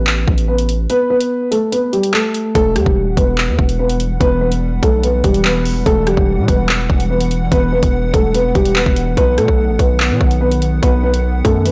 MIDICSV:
0, 0, Header, 1, 5, 480
1, 0, Start_track
1, 0, Key_signature, 1, "minor"
1, 0, Tempo, 413793
1, 1039, Time_signature, 4, 2, 24, 8
1, 13589, End_track
2, 0, Start_track
2, 0, Title_t, "Grand piano"
2, 0, Program_c, 0, 0
2, 0, Note_on_c, 0, 59, 55
2, 0, Note_on_c, 0, 71, 76
2, 514, Note_off_c, 0, 71, 0
2, 519, Note_off_c, 0, 59, 0
2, 558, Note_on_c, 0, 71, 77
2, 568, Note_on_c, 0, 59, 66
2, 769, Note_off_c, 0, 71, 0
2, 774, Note_off_c, 0, 59, 0
2, 1042, Note_on_c, 0, 71, 100
2, 1051, Note_on_c, 0, 59, 76
2, 1251, Note_off_c, 0, 71, 0
2, 1256, Note_off_c, 0, 59, 0
2, 1278, Note_on_c, 0, 71, 93
2, 1287, Note_on_c, 0, 59, 79
2, 1730, Note_off_c, 0, 71, 0
2, 1735, Note_off_c, 0, 59, 0
2, 1756, Note_on_c, 0, 69, 73
2, 1765, Note_on_c, 0, 57, 55
2, 1967, Note_off_c, 0, 69, 0
2, 1972, Note_off_c, 0, 57, 0
2, 1997, Note_on_c, 0, 71, 84
2, 2006, Note_on_c, 0, 59, 72
2, 2208, Note_off_c, 0, 71, 0
2, 2213, Note_off_c, 0, 59, 0
2, 2237, Note_on_c, 0, 67, 75
2, 2247, Note_on_c, 0, 55, 65
2, 2448, Note_off_c, 0, 67, 0
2, 2454, Note_off_c, 0, 55, 0
2, 2480, Note_on_c, 0, 69, 85
2, 2490, Note_on_c, 0, 57, 66
2, 2931, Note_off_c, 0, 69, 0
2, 2936, Note_off_c, 0, 57, 0
2, 2962, Note_on_c, 0, 69, 111
2, 2971, Note_on_c, 0, 57, 84
2, 3171, Note_off_c, 0, 69, 0
2, 3176, Note_off_c, 0, 57, 0
2, 3199, Note_on_c, 0, 67, 84
2, 3208, Note_on_c, 0, 55, 62
2, 3650, Note_off_c, 0, 67, 0
2, 3655, Note_off_c, 0, 55, 0
2, 3681, Note_on_c, 0, 71, 82
2, 3690, Note_on_c, 0, 59, 68
2, 4357, Note_off_c, 0, 71, 0
2, 4362, Note_off_c, 0, 59, 0
2, 4400, Note_on_c, 0, 71, 80
2, 4409, Note_on_c, 0, 59, 75
2, 4610, Note_off_c, 0, 71, 0
2, 4615, Note_off_c, 0, 59, 0
2, 4875, Note_on_c, 0, 71, 106
2, 4885, Note_on_c, 0, 59, 86
2, 5087, Note_off_c, 0, 71, 0
2, 5093, Note_off_c, 0, 59, 0
2, 5117, Note_on_c, 0, 71, 86
2, 5126, Note_on_c, 0, 59, 67
2, 5569, Note_off_c, 0, 71, 0
2, 5574, Note_off_c, 0, 59, 0
2, 5607, Note_on_c, 0, 69, 80
2, 5616, Note_on_c, 0, 57, 66
2, 5814, Note_off_c, 0, 69, 0
2, 5819, Note_off_c, 0, 57, 0
2, 5840, Note_on_c, 0, 71, 80
2, 5848, Note_on_c, 0, 59, 60
2, 6050, Note_off_c, 0, 71, 0
2, 6055, Note_off_c, 0, 59, 0
2, 6080, Note_on_c, 0, 67, 74
2, 6089, Note_on_c, 0, 55, 64
2, 6290, Note_off_c, 0, 67, 0
2, 6295, Note_off_c, 0, 55, 0
2, 6320, Note_on_c, 0, 71, 86
2, 6330, Note_on_c, 0, 59, 73
2, 6771, Note_off_c, 0, 71, 0
2, 6776, Note_off_c, 0, 59, 0
2, 6798, Note_on_c, 0, 69, 103
2, 6807, Note_on_c, 0, 57, 83
2, 7009, Note_off_c, 0, 69, 0
2, 7014, Note_off_c, 0, 57, 0
2, 7037, Note_on_c, 0, 67, 81
2, 7046, Note_on_c, 0, 55, 68
2, 7489, Note_off_c, 0, 67, 0
2, 7494, Note_off_c, 0, 55, 0
2, 7522, Note_on_c, 0, 71, 77
2, 7531, Note_on_c, 0, 59, 58
2, 8198, Note_off_c, 0, 71, 0
2, 8203, Note_off_c, 0, 59, 0
2, 8240, Note_on_c, 0, 71, 78
2, 8250, Note_on_c, 0, 59, 62
2, 8450, Note_off_c, 0, 71, 0
2, 8455, Note_off_c, 0, 59, 0
2, 8718, Note_on_c, 0, 71, 103
2, 8728, Note_on_c, 0, 59, 82
2, 8929, Note_off_c, 0, 71, 0
2, 8934, Note_off_c, 0, 59, 0
2, 8961, Note_on_c, 0, 71, 88
2, 8971, Note_on_c, 0, 59, 73
2, 9412, Note_off_c, 0, 71, 0
2, 9417, Note_off_c, 0, 59, 0
2, 9443, Note_on_c, 0, 69, 76
2, 9452, Note_on_c, 0, 57, 57
2, 9652, Note_off_c, 0, 69, 0
2, 9657, Note_off_c, 0, 57, 0
2, 9682, Note_on_c, 0, 71, 93
2, 9691, Note_on_c, 0, 59, 70
2, 9891, Note_off_c, 0, 71, 0
2, 9896, Note_off_c, 0, 59, 0
2, 9920, Note_on_c, 0, 67, 87
2, 9929, Note_on_c, 0, 55, 64
2, 10130, Note_off_c, 0, 67, 0
2, 10135, Note_off_c, 0, 55, 0
2, 10152, Note_on_c, 0, 71, 85
2, 10161, Note_on_c, 0, 59, 70
2, 10607, Note_off_c, 0, 71, 0
2, 10612, Note_off_c, 0, 59, 0
2, 10639, Note_on_c, 0, 71, 115
2, 10648, Note_on_c, 0, 59, 85
2, 10849, Note_off_c, 0, 71, 0
2, 10854, Note_off_c, 0, 59, 0
2, 10881, Note_on_c, 0, 69, 83
2, 10890, Note_on_c, 0, 57, 70
2, 11332, Note_off_c, 0, 69, 0
2, 11337, Note_off_c, 0, 57, 0
2, 11360, Note_on_c, 0, 71, 78
2, 11369, Note_on_c, 0, 59, 65
2, 12037, Note_off_c, 0, 71, 0
2, 12041, Note_off_c, 0, 59, 0
2, 12074, Note_on_c, 0, 71, 87
2, 12084, Note_on_c, 0, 59, 72
2, 12286, Note_off_c, 0, 71, 0
2, 12292, Note_off_c, 0, 59, 0
2, 12557, Note_on_c, 0, 71, 103
2, 12566, Note_on_c, 0, 59, 83
2, 12768, Note_off_c, 0, 71, 0
2, 12773, Note_off_c, 0, 59, 0
2, 12799, Note_on_c, 0, 71, 89
2, 12808, Note_on_c, 0, 59, 63
2, 13250, Note_off_c, 0, 71, 0
2, 13255, Note_off_c, 0, 59, 0
2, 13280, Note_on_c, 0, 69, 80
2, 13289, Note_on_c, 0, 57, 64
2, 13490, Note_off_c, 0, 69, 0
2, 13495, Note_off_c, 0, 57, 0
2, 13519, Note_on_c, 0, 71, 87
2, 13529, Note_on_c, 0, 59, 62
2, 13589, Note_off_c, 0, 59, 0
2, 13589, Note_off_c, 0, 71, 0
2, 13589, End_track
3, 0, Start_track
3, 0, Title_t, "Analog synth pad"
3, 0, Program_c, 1, 89
3, 2960, Note_on_c, 1, 52, 82
3, 2960, Note_on_c, 1, 55, 75
3, 2960, Note_on_c, 1, 78, 92
3, 10593, Note_off_c, 1, 52, 0
3, 10593, Note_off_c, 1, 55, 0
3, 10639, Note_on_c, 1, 51, 83
3, 10640, Note_on_c, 1, 59, 78
3, 13589, Note_off_c, 1, 51, 0
3, 13589, Note_off_c, 1, 59, 0
3, 13589, Note_off_c, 1, 78, 0
3, 13589, End_track
4, 0, Start_track
4, 0, Title_t, "808-style bass"
4, 0, Program_c, 2, 38
4, 0, Note_on_c, 2, 33, 102
4, 300, Note_off_c, 2, 33, 0
4, 320, Note_on_c, 2, 33, 107
4, 1011, Note_off_c, 2, 33, 0
4, 2959, Note_on_c, 2, 28, 103
4, 3199, Note_on_c, 2, 40, 100
4, 3217, Note_off_c, 2, 28, 0
4, 3314, Note_off_c, 2, 40, 0
4, 3320, Note_on_c, 2, 28, 110
4, 3560, Note_on_c, 2, 27, 99
4, 3577, Note_off_c, 2, 28, 0
4, 3674, Note_off_c, 2, 27, 0
4, 3679, Note_on_c, 2, 28, 109
4, 4039, Note_on_c, 2, 40, 96
4, 4057, Note_off_c, 2, 28, 0
4, 4153, Note_off_c, 2, 40, 0
4, 4160, Note_on_c, 2, 28, 106
4, 4851, Note_off_c, 2, 28, 0
4, 4879, Note_on_c, 2, 28, 113
4, 5571, Note_off_c, 2, 28, 0
4, 5599, Note_on_c, 2, 35, 103
4, 6060, Note_off_c, 2, 35, 0
4, 6079, Note_on_c, 2, 28, 104
4, 6771, Note_off_c, 2, 28, 0
4, 6799, Note_on_c, 2, 28, 112
4, 7145, Note_off_c, 2, 28, 0
4, 7160, Note_on_c, 2, 28, 109
4, 7400, Note_on_c, 2, 47, 103
4, 7417, Note_off_c, 2, 28, 0
4, 7514, Note_off_c, 2, 47, 0
4, 7519, Note_on_c, 2, 28, 106
4, 7980, Note_off_c, 2, 28, 0
4, 8000, Note_on_c, 2, 28, 106
4, 8691, Note_off_c, 2, 28, 0
4, 8719, Note_on_c, 2, 28, 108
4, 9065, Note_off_c, 2, 28, 0
4, 9080, Note_on_c, 2, 28, 101
4, 9425, Note_off_c, 2, 28, 0
4, 9439, Note_on_c, 2, 28, 104
4, 9900, Note_off_c, 2, 28, 0
4, 9919, Note_on_c, 2, 28, 103
4, 10265, Note_off_c, 2, 28, 0
4, 10280, Note_on_c, 2, 28, 101
4, 10625, Note_off_c, 2, 28, 0
4, 10639, Note_on_c, 2, 35, 110
4, 10879, Note_on_c, 2, 47, 99
4, 10897, Note_off_c, 2, 35, 0
4, 10994, Note_off_c, 2, 47, 0
4, 10999, Note_on_c, 2, 35, 114
4, 11240, Note_on_c, 2, 33, 99
4, 11257, Note_off_c, 2, 35, 0
4, 11354, Note_off_c, 2, 33, 0
4, 11359, Note_on_c, 2, 35, 107
4, 11720, Note_on_c, 2, 47, 99
4, 11737, Note_off_c, 2, 35, 0
4, 11834, Note_off_c, 2, 47, 0
4, 11840, Note_on_c, 2, 35, 102
4, 12531, Note_off_c, 2, 35, 0
4, 12559, Note_on_c, 2, 35, 110
4, 13250, Note_off_c, 2, 35, 0
4, 13279, Note_on_c, 2, 42, 106
4, 13589, Note_off_c, 2, 42, 0
4, 13589, End_track
5, 0, Start_track
5, 0, Title_t, "Drums"
5, 80, Note_on_c, 9, 39, 121
5, 196, Note_off_c, 9, 39, 0
5, 319, Note_on_c, 9, 36, 98
5, 435, Note_off_c, 9, 36, 0
5, 439, Note_on_c, 9, 42, 64
5, 555, Note_off_c, 9, 42, 0
5, 678, Note_on_c, 9, 42, 77
5, 794, Note_off_c, 9, 42, 0
5, 798, Note_on_c, 9, 42, 75
5, 914, Note_off_c, 9, 42, 0
5, 1040, Note_on_c, 9, 42, 82
5, 1156, Note_off_c, 9, 42, 0
5, 1398, Note_on_c, 9, 42, 83
5, 1514, Note_off_c, 9, 42, 0
5, 1761, Note_on_c, 9, 42, 86
5, 1877, Note_off_c, 9, 42, 0
5, 2000, Note_on_c, 9, 42, 88
5, 2116, Note_off_c, 9, 42, 0
5, 2240, Note_on_c, 9, 42, 51
5, 2356, Note_off_c, 9, 42, 0
5, 2360, Note_on_c, 9, 42, 82
5, 2476, Note_off_c, 9, 42, 0
5, 2480, Note_on_c, 9, 39, 112
5, 2596, Note_off_c, 9, 39, 0
5, 2719, Note_on_c, 9, 42, 79
5, 2835, Note_off_c, 9, 42, 0
5, 2959, Note_on_c, 9, 36, 110
5, 2960, Note_on_c, 9, 42, 76
5, 3075, Note_off_c, 9, 36, 0
5, 3076, Note_off_c, 9, 42, 0
5, 3199, Note_on_c, 9, 42, 87
5, 3200, Note_on_c, 9, 37, 95
5, 3315, Note_off_c, 9, 42, 0
5, 3316, Note_off_c, 9, 37, 0
5, 3320, Note_on_c, 9, 36, 91
5, 3436, Note_off_c, 9, 36, 0
5, 3679, Note_on_c, 9, 36, 109
5, 3680, Note_on_c, 9, 42, 85
5, 3795, Note_off_c, 9, 36, 0
5, 3796, Note_off_c, 9, 42, 0
5, 3920, Note_on_c, 9, 39, 120
5, 4036, Note_off_c, 9, 39, 0
5, 4160, Note_on_c, 9, 36, 94
5, 4276, Note_off_c, 9, 36, 0
5, 4279, Note_on_c, 9, 42, 63
5, 4395, Note_off_c, 9, 42, 0
5, 4518, Note_on_c, 9, 42, 75
5, 4634, Note_off_c, 9, 42, 0
5, 4639, Note_on_c, 9, 42, 77
5, 4755, Note_off_c, 9, 42, 0
5, 4879, Note_on_c, 9, 36, 115
5, 4880, Note_on_c, 9, 42, 78
5, 4995, Note_off_c, 9, 36, 0
5, 4996, Note_off_c, 9, 42, 0
5, 5239, Note_on_c, 9, 42, 80
5, 5355, Note_off_c, 9, 42, 0
5, 5599, Note_on_c, 9, 36, 111
5, 5600, Note_on_c, 9, 42, 84
5, 5715, Note_off_c, 9, 36, 0
5, 5716, Note_off_c, 9, 42, 0
5, 5840, Note_on_c, 9, 42, 85
5, 5956, Note_off_c, 9, 42, 0
5, 6077, Note_on_c, 9, 42, 80
5, 6079, Note_on_c, 9, 36, 99
5, 6193, Note_off_c, 9, 42, 0
5, 6195, Note_off_c, 9, 36, 0
5, 6199, Note_on_c, 9, 42, 68
5, 6315, Note_off_c, 9, 42, 0
5, 6320, Note_on_c, 9, 39, 116
5, 6436, Note_off_c, 9, 39, 0
5, 6559, Note_on_c, 9, 46, 56
5, 6675, Note_off_c, 9, 46, 0
5, 6799, Note_on_c, 9, 36, 110
5, 6800, Note_on_c, 9, 42, 79
5, 6915, Note_off_c, 9, 36, 0
5, 6916, Note_off_c, 9, 42, 0
5, 7039, Note_on_c, 9, 42, 83
5, 7040, Note_on_c, 9, 37, 92
5, 7155, Note_off_c, 9, 42, 0
5, 7156, Note_off_c, 9, 37, 0
5, 7160, Note_on_c, 9, 36, 94
5, 7276, Note_off_c, 9, 36, 0
5, 7519, Note_on_c, 9, 36, 109
5, 7521, Note_on_c, 9, 42, 86
5, 7635, Note_off_c, 9, 36, 0
5, 7637, Note_off_c, 9, 42, 0
5, 7760, Note_on_c, 9, 39, 119
5, 7876, Note_off_c, 9, 39, 0
5, 8000, Note_on_c, 9, 36, 96
5, 8116, Note_off_c, 9, 36, 0
5, 8119, Note_on_c, 9, 42, 64
5, 8235, Note_off_c, 9, 42, 0
5, 8358, Note_on_c, 9, 42, 78
5, 8474, Note_off_c, 9, 42, 0
5, 8479, Note_on_c, 9, 42, 79
5, 8595, Note_off_c, 9, 42, 0
5, 8719, Note_on_c, 9, 36, 115
5, 8720, Note_on_c, 9, 42, 79
5, 8835, Note_off_c, 9, 36, 0
5, 8836, Note_off_c, 9, 42, 0
5, 9079, Note_on_c, 9, 42, 83
5, 9080, Note_on_c, 9, 36, 90
5, 9195, Note_off_c, 9, 42, 0
5, 9196, Note_off_c, 9, 36, 0
5, 9439, Note_on_c, 9, 36, 108
5, 9440, Note_on_c, 9, 42, 84
5, 9555, Note_off_c, 9, 36, 0
5, 9556, Note_off_c, 9, 42, 0
5, 9680, Note_on_c, 9, 42, 85
5, 9796, Note_off_c, 9, 42, 0
5, 9919, Note_on_c, 9, 36, 98
5, 9919, Note_on_c, 9, 42, 52
5, 10035, Note_off_c, 9, 36, 0
5, 10035, Note_off_c, 9, 42, 0
5, 10039, Note_on_c, 9, 42, 83
5, 10155, Note_off_c, 9, 42, 0
5, 10159, Note_on_c, 9, 39, 116
5, 10275, Note_off_c, 9, 39, 0
5, 10280, Note_on_c, 9, 36, 99
5, 10396, Note_off_c, 9, 36, 0
5, 10399, Note_on_c, 9, 42, 81
5, 10515, Note_off_c, 9, 42, 0
5, 10639, Note_on_c, 9, 36, 111
5, 10639, Note_on_c, 9, 42, 77
5, 10755, Note_off_c, 9, 36, 0
5, 10755, Note_off_c, 9, 42, 0
5, 10878, Note_on_c, 9, 42, 84
5, 10880, Note_on_c, 9, 37, 89
5, 10994, Note_off_c, 9, 42, 0
5, 10996, Note_off_c, 9, 37, 0
5, 10999, Note_on_c, 9, 36, 94
5, 11115, Note_off_c, 9, 36, 0
5, 11359, Note_on_c, 9, 36, 106
5, 11360, Note_on_c, 9, 42, 83
5, 11475, Note_off_c, 9, 36, 0
5, 11476, Note_off_c, 9, 42, 0
5, 11600, Note_on_c, 9, 39, 121
5, 11716, Note_off_c, 9, 39, 0
5, 11839, Note_on_c, 9, 36, 98
5, 11955, Note_off_c, 9, 36, 0
5, 11958, Note_on_c, 9, 42, 61
5, 12074, Note_off_c, 9, 42, 0
5, 12198, Note_on_c, 9, 42, 76
5, 12314, Note_off_c, 9, 42, 0
5, 12319, Note_on_c, 9, 42, 77
5, 12435, Note_off_c, 9, 42, 0
5, 12559, Note_on_c, 9, 36, 112
5, 12559, Note_on_c, 9, 42, 78
5, 12675, Note_off_c, 9, 36, 0
5, 12675, Note_off_c, 9, 42, 0
5, 12919, Note_on_c, 9, 42, 82
5, 13035, Note_off_c, 9, 42, 0
5, 13279, Note_on_c, 9, 36, 112
5, 13280, Note_on_c, 9, 42, 86
5, 13395, Note_off_c, 9, 36, 0
5, 13396, Note_off_c, 9, 42, 0
5, 13521, Note_on_c, 9, 42, 86
5, 13589, Note_off_c, 9, 42, 0
5, 13589, End_track
0, 0, End_of_file